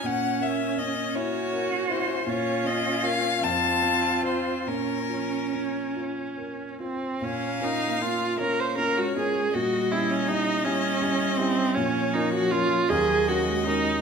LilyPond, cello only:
\new Staff \with { instrumentName = "Cello" } { \time 6/8 \key bes \minor \tempo 4. = 52 des'4. ges'4. | f'4. f'4. | des'2~ des'16 r8. | bes4. bes8. aes8. |
g4. g4. | f4. ges8. aes8. | }